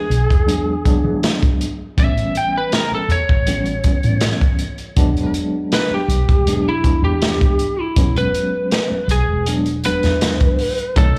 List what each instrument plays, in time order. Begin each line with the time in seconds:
Already playing: lead electric guitar G#4
0.10 fretless electric bass B1, closed hi-hat
0.30 fretless electric bass E2, kick, closed hi-hat
0.47 tine electric piano F#3 G#3 B3 D4, closed hi-hat
0.85 tine electric piano F#3 G#3 B3 D4, kick, closed hi-hat
1.04 fretless electric bass E3
1.23 snare, closed hi-hat
1.42 kick, closed hi-hat
1.61 closed hi-hat
1.97 fretless electric bass A1, tine electric piano E3 G3 B3 C#4, lead electric guitar E5, kick, closed hi-hat
2.17 closed hi-hat
2.35 lead electric guitar G5, closed hi-hat
2.58 lead electric guitar B4
2.72 lead electric guitar A#4, snare, closed hi-hat
2.91 lead electric guitar A4, muted fretless electric bass stroke
3.08 fretless electric bass E2, lead electric guitar C#5, closed hi-hat
3.29 fretless electric bass A1, kick
3.47 tine electric piano E3 G3 B3 C#4, closed hi-hat
3.66 closed hi-hat
3.84 tine electric piano E3 G3 B3 C#4, kick, closed hi-hat
4.03 fretless electric bass A2, closed hi-hat
4.21 snare, closed hi-hat
4.41 kick, closed hi-hat
4.59 closed hi-hat
4.78 closed hi-hat
4.96 fretless electric bass E1, tine electric piano F#3 G#3 B3 D4, kick, closed hi-hat
5.17 closed hi-hat
5.34 closed hi-hat
5.72 lead electric guitar B4, snare, closed hi-hat
5.91 lead electric guitar G4, muted fretless electric bass stroke
6.08 fretless electric bass B1, closed hi-hat
6.29 fretless electric bass E1, kick, closed hi-hat
6.47 tine electric piano F#3 G#3 B3 D4, closed hi-hat
6.69 lead electric guitar E4
6.84 tine electric piano E3 G#3 B3 D4, kick, closed hi-hat
7.02 fretless electric bass E2, lead electric guitar G4
7.22 snare, closed hi-hat
7.41 kick, closed hi-hat
7.59 closed hi-hat
7.80 lead electric guitar E4
7.96 fretless electric bass E1, tine electric piano F#3 G#3 B3 C#4, kick, closed hi-hat
8.16 lead electric guitar B4, closed hi-hat
8.34 closed hi-hat
8.71 snare, closed hi-hat
8.91 muted fretless electric bass stroke
9.08 fretless electric bass B1, lead electric guitar G#4, closed hi-hat
9.28 fretless electric bass E1
9.46 tine electric piano F#3 G#3 B3 D4, closed hi-hat
9.66 closed hi-hat
9.84 tine electric piano F#3 G#3 B3 D4, lead electric guitar B4, closed hi-hat
10.03 fretless electric bass E2, snare, closed hi-hat
10.21 snare, closed hi-hat
10.40 kick, closed hi-hat
10.59 open hi-hat
10.78 closed hi-hat
10.96 fretless electric bass B1, tine electric piano D#3 F#3 A3 C#5, clean electric guitar F#3 C#4 D#4 A4, lead electric guitar A4, kick, closed hi-hat